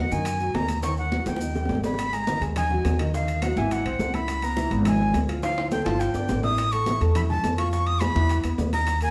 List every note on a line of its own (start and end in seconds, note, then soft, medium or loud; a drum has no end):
0.00 0.14 F#5 loud
0.11 0.52 F#2 loud
0.11 0.35 D#3 medium
0.11 0.35 D#4 medium
0.11 0.56 G#5 loud
0.11 high conga soft
0.11 maracas medium
0.25 high bongo medium
0.25 high conga soft
0.25 high timbale medium
0.25 maracas medium
0.40 0.52 F#3 medium
0.40 0.52 F#4 medium
0.40 high bongo soft
0.40 high conga soft
0.40 maracas soft
0.54 1.21 D#2 medium
0.54 0.78 D#3 medium
0.54 0.79 D#4 medium
0.54 0.82 A#5 loud
0.54 high bongo medium
0.54 low bongo medium
0.54 high conga medium
0.54 high timbale medium
0.54 low timbale medium
0.54 maracas soft
0.69 high bongo soft
0.69 high conga medium
0.69 high timbale medium
0.69 maracas medium
0.83 1.07 D#3 medium
0.83 1.07 D#4 medium
0.83 0.97 C#6 medium
0.83 high bongo medium
0.83 high conga soft
0.83 high timbale loud
0.83 maracas medium
0.97 1.29 F#5 medium
0.97 high conga soft
0.97 maracas soft
1.12 1.36 F#3 medium
1.12 1.36 F#4 medium
1.12 high bongo medium
1.12 high conga loud
1.12 maracas soft
1.26 1.67 D#2 medium
1.26 1.84 G5 medium
1.26 high bongo medium
1.26 high conga medium
1.26 low timbale medium
1.26 maracas medium
1.36 high bongo loud
1.36 high conga soft
1.41 1.52 D#4 medium
1.41 1.53 D#5 medium
1.41 maracas medium
1.55 1.78 G3 medium
1.55 1.79 G4 medium
1.55 low bongo medium
1.55 high conga soft
1.55 maracas soft
1.65 2.36 G#1 medium
1.65 low bongo medium
1.65 high conga medium
1.69 low timbale medium
1.69 maracas soft
1.75 low bongo medium
1.83 1.95 G#3 medium
1.83 1.96 G#4 medium
1.83 2.15 B5 medium
1.83 high conga medium
1.83 low timbale loud
1.83 maracas medium
1.94 low bongo medium
1.98 high bongo medium
1.98 high conga soft
1.98 high timbale medium
1.98 maracas medium
2.13 2.24 G#3 medium
2.13 2.24 G#4 medium
2.13 2.25 G#5 medium
2.13 2.42 A#5 loud
2.13 high bongo soft
2.13 high conga soft
2.13 high timbale medium
2.13 maracas medium
2.27 2.39 D#3 medium
2.27 2.39 D#4 medium
2.27 2.39 D#5 medium
2.27 high bongo medium
2.27 high conga loud
2.27 low timbale medium
2.27 maracas medium
2.41 2.81 D#2 loud
2.41 2.53 G#3 medium
2.41 2.53 G#4 medium
2.41 2.54 G#5 medium
2.41 high conga soft
2.41 high timbale medium
2.41 maracas soft
2.56 2.68 D#4 medium
2.56 2.68 D#5 medium
2.56 2.96 G#5 medium
2.56 2.68 D#6 medium
2.56 high bongo medium
2.56 high conga soft
2.56 low conga medium
2.56 high timbale loud
2.56 maracas medium
2.70 2.94 F#3 medium
2.70 2.94 F#4 medium
2.70 2.94 F#5 medium
2.70 high bongo soft
2.70 high conga soft
2.70 low conga medium
2.84 3.51 D#2 medium
2.84 high bongo soft
2.84 low bongo medium
2.84 high conga medium
2.84 high timbale medium
2.84 low timbale medium
2.84 maracas medium
2.99 3.11 D#3 medium
2.99 3.11 D#4 medium
2.99 3.11 D#5 medium
2.99 high bongo soft
2.99 high conga soft
2.99 high timbale loud
2.99 maracas soft
3.14 3.37 D#3 medium
3.14 3.37 D#4 medium
3.14 3.38 D#5 medium
3.14 3.44 F5 medium
3.14 high bongo medium
3.14 high conga soft
3.14 maracas medium
3.28 high bongo soft
3.28 high conga soft
3.28 high timbale medium
3.28 maracas medium
3.42 3.54 F#3 medium
3.42 3.54 F#4 medium
3.42 3.60 F#5 loud
3.42 3.55 F#5 medium
3.42 high bongo medium
3.42 high conga loud
3.42 high timbale loud
3.42 low timbale medium
3.42 maracas medium
3.56 3.83 G#1 loud
3.56 3.80 E3 medium
3.56 3.80 E4 medium
3.56 3.81 E5 medium
3.56 3.74 G#5 medium
3.56 high conga medium
3.56 maracas soft
3.71 4.16 F#5 medium
3.71 high bongo medium
3.71 high conga soft
3.71 high timbale medium
3.71 maracas medium
3.85 3.98 B1 medium
3.85 4.09 C4 medium
3.85 4.09 C5 medium
3.85 4.09 C6 medium
3.85 high conga soft
3.85 high timbale medium
3.99 4.66 C#2 medium
3.99 high bongo soft
3.99 low bongo medium
3.99 high conga medium
3.99 low timbale medium
3.99 maracas medium
4.14 4.38 E4 medium
4.14 4.38 E5 medium
4.14 4.46 B5 loud
4.14 4.38 E6 medium
4.14 high bongo soft
4.14 high conga medium
4.14 high timbale medium
4.14 maracas soft
4.28 high bongo medium
4.28 high conga soft
4.28 high timbale loud
4.28 maracas medium
4.42 4.55 B3 medium
4.42 4.55 B4 medium
4.42 4.72 A#5 loud
4.42 4.55 B5 medium
4.42 high bongo soft
4.42 high conga soft
4.42 high timbale medium
4.42 maracas medium
4.57 4.68 E3 medium
4.57 4.69 E4 medium
4.57 4.69 E5 medium
4.57 high bongo medium
4.57 high conga medium
4.57 low timbale medium
4.57 maracas medium
4.71 5.11 G#1 loud
4.71 4.83 B3 medium
4.71 4.83 B4 medium
4.71 4.83 B5 medium
4.71 high conga soft
4.71 high timbale medium
4.71 maracas soft
4.85 4.97 E4 medium
4.85 4.97 E5 medium
4.85 5.18 G#5 medium
4.85 4.98 E6 medium
4.85 high bongo medium
4.85 high conga soft
4.85 low conga medium
4.85 high timbale loud
4.85 maracas medium
5.00 5.23 G#3 medium
5.00 5.24 G#4 medium
5.00 5.23 G#5 medium
5.00 high bongo soft
5.00 high conga soft
5.14 5.80 D2 medium
5.14 high bongo soft
5.14 low bongo medium
5.14 high conga medium
5.14 high timbale medium
5.14 low timbale medium
5.14 maracas medium
5.28 5.40 F3 medium
5.28 5.40 F4 medium
5.28 5.41 F5 medium
5.28 high bongo soft
5.28 high timbale medium
5.28 maracas soft
5.42 5.66 F3 medium
5.42 5.66 F4 medium
5.42 5.66 F5 medium
5.42 5.70 F5 loud
5.42 high bongo medium
5.42 high conga soft
5.42 high timbale loud
5.42 maracas medium
5.57 high bongo soft
5.57 high conga soft
5.57 high timbale medium
5.71 5.83 A3 medium
5.71 5.83 A4 medium
5.71 5.82 G5 loud
5.71 5.84 A5 medium
5.71 high bongo medium
5.71 high conga loud
5.71 high timbale medium
5.71 maracas medium
5.82 6.13 G1 loud
5.82 6.09 F3 loud
5.82 6.10 F4 medium
5.82 5.86 G5 medium
5.82 6.01 A5 medium
5.82 high conga medium
5.82 maracas soft
5.86 6.10 F5 medium
5.86 high timbale loud
6.00 6.43 G5 medium
6.00 high bongo medium
6.00 maracas medium
6.14 6.28 G1 medium
6.14 6.38 D4 medium
6.14 6.38 D5 medium
6.14 6.39 D6 medium
6.14 high bongo soft
6.14 high conga soft
6.14 low timbale medium
6.14 maracas medium
6.29 6.95 A1 medium
6.29 high bongo soft
6.29 low bongo medium
6.29 high conga loud
6.29 low timbale loud
6.29 maracas medium
6.43 6.67 E4 medium
6.43 6.67 E5 medium
6.43 6.73 D#6 loud
6.43 6.67 E6 medium
6.43 high bongo soft
6.43 high conga medium
6.43 low timbale loud
6.43 maracas soft
6.58 high bongo medium
6.58 high conga soft
6.58 high timbale loud
6.58 maracas medium
6.72 6.84 A3 medium
6.72 6.84 A4 medium
6.72 6.85 A5 medium
6.72 7.01 C#6 loud
6.72 high bongo soft
6.72 high conga soft
6.72 high timbale medium
6.72 maracas medium
6.86 6.98 E3 medium
6.86 6.98 E4 medium
6.86 6.99 E5 medium
6.86 high bongo medium
6.86 high conga loud
6.86 low timbale medium
6.86 maracas medium
7.01 7.41 E2 loud
7.01 7.13 A3 medium
7.01 7.13 A4 medium
7.01 7.13 A5 medium
7.01 high conga soft
7.01 high timbale medium
7.01 maracas soft
7.15 7.27 E4 medium
7.15 7.27 E5 medium
7.15 7.22 B5 medium
7.15 7.28 E6 medium
7.15 high bongo medium
7.15 high conga soft
7.15 low conga medium
7.15 high timbale loud
7.15 maracas medium
7.29 7.53 G#3 medium
7.29 7.53 G#4 medium
7.29 7.53 G#5 medium
7.29 7.56 A5 loud
7.29 high bongo soft
7.29 high conga soft
7.29 low conga medium
7.43 8.10 F2 medium
7.43 high bongo soft
7.43 low bongo medium
7.43 high conga medium
7.43 high timbale medium
7.43 low timbale medium
7.43 maracas medium
7.58 7.70 F3 medium
7.58 7.70 F4 medium
7.58 7.70 F5 medium
7.58 7.71 C#6 medium
7.58 high bongo soft
7.58 high conga soft
7.58 high timbale loud
7.58 maracas soft
7.72 7.96 F3 medium
7.72 7.96 F4 medium
7.72 7.96 F5 medium
7.72 7.88 C#6 loud
7.72 high bongo medium
7.72 high conga soft
7.72 maracas medium
7.87 8.03 D#6 loud
7.87 high bongo soft
7.87 high conga soft
7.87 high timbale medium
8.00 8.13 G#3 medium
8.00 8.13 G#4 medium
8.00 8.13 G#5 medium
8.00 8.46 B5 loud
8.00 high bongo medium
8.00 high conga loud
8.00 high timbale loud
8.00 low timbale medium
8.00 maracas medium
8.15 8.42 E2 loud
8.15 8.39 E3 medium
8.15 8.39 E4 medium
8.15 8.39 E5 medium
8.15 high conga medium
8.15 maracas soft
8.29 high bongo medium
8.29 high conga soft
8.29 high timbale medium
8.29 maracas medium
8.44 8.58 E2 medium
8.44 8.68 B3 medium
8.44 8.68 B4 medium
8.44 8.68 B5 medium
8.44 high bongo soft
8.44 high conga soft
8.44 high timbale loud
8.44 maracas medium
8.58 9.11 D#2 medium
8.58 high bongo soft
8.58 low bongo medium
8.58 high conga medium
8.58 low timbale medium
8.58 maracas medium
8.73 8.97 D#4 medium
8.73 8.97 D#5 medium
8.73 9.00 A#5 loud
8.73 8.97 D#6 medium
8.73 high bongo soft
8.73 high conga medium
8.73 high timbale medium
8.73 maracas soft
8.87 high bongo medium
8.87 high conga soft
8.87 high timbale medium
8.87 maracas medium
9.01 9.11 A#3 medium
9.01 9.11 A#4 medium
9.01 9.11 G#5 loud
9.01 9.11 A#5 medium
9.01 high bongo soft
9.01 high conga soft
9.01 high timbale medium
9.01 maracas medium